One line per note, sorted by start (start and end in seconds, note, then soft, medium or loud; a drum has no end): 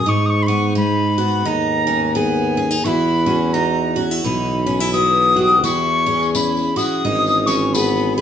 0.00 0.10 D#6 loud
0.06 2.82 G#2 medium
0.06 1.42 G#2 loud
0.06 0.47 D#4 medium
0.06 0.27 C#6 loud
0.26 0.44 C#6 loud
0.26 0.31 D#6 medium
0.43 0.48 B5 medium
0.43 0.77 C#6 loud
0.48 0.75 B3 medium
0.48 2.57 D#4 medium
0.75 2.82 G#3 medium
0.75 1.16 D#4 medium
0.75 1.48 B5 medium
1.18 1.88 B3 medium
1.18 1.45 F#4 medium
1.45 2.86 D#2 medium
1.45 2.82 D#3 medium
1.45 1.86 D#4 medium
1.45 2.18 A#5 medium
1.87 2.85 B3 soft
1.87 2.14 C#4 medium
2.15 2.56 B3 medium
2.15 2.82 G#4 medium
2.15 2.86 G#5 medium
2.57 2.71 C#4 medium
2.57 2.84 G#4 medium
2.71 2.85 D#4 soft
2.84 4.21 E2 loud
2.84 5.62 E3 medium
2.84 3.54 B3 medium
2.84 3.26 E4 medium
2.84 3.96 E4 medium
2.84 3.25 F#4 medium
2.84 3.55 B5 loud
2.84 2.88 C#6 loud
3.26 3.53 C#4 medium
3.26 4.93 F#4 medium
3.53 6.34 B3 medium
3.53 3.95 D#4 medium
3.53 4.02 A#5 medium
3.96 4.11 C#4 medium
3.96 4.24 F#4 medium
4.11 4.66 E4 soft
4.24 5.65 B1 loud
4.24 5.64 B2 medium
4.24 4.66 D#4 medium
4.24 4.91 B5 medium
4.66 4.80 C#4 medium
4.66 4.93 C#4 medium
4.80 5.64 E4 soft
4.93 5.35 B3 medium
4.93 5.35 F#4 medium
4.93 5.60 D#6 medium
5.36 5.64 F#4 medium
5.36 5.63 G4 medium
5.63 6.87 E2 loud
5.63 7.04 E3 medium
5.63 6.05 E4 medium
5.63 6.30 C#6 loud
5.63 tambourine medium
6.06 6.34 C#4 medium
6.06 7.74 G#4 medium
6.23 tambourine soft
6.35 8.21 C#4 medium
6.35 6.76 E4 medium
6.35 6.78 B5 medium
6.35 tambourine loud
6.57 tambourine soft
6.76 7.46 E4 medium
6.76 7.04 F#4 medium
6.76 7.48 D#6 loud
6.76 tambourine medium
7.04 8.21 G#1 loud
7.04 8.21 E3 medium
7.04 7.46 D#4 medium
7.27 tambourine soft
7.46 7.74 C#4 medium
7.46 8.21 E4 medium
7.46 7.75 C#6 medium
7.46 tambourine medium
7.74 8.16 B3 medium
7.74 8.17 G#4 medium
7.74 8.16 B5 medium
7.74 tambourine loud
7.97 tambourine soft
8.16 8.21 G#4 medium
8.16 8.21 B5 medium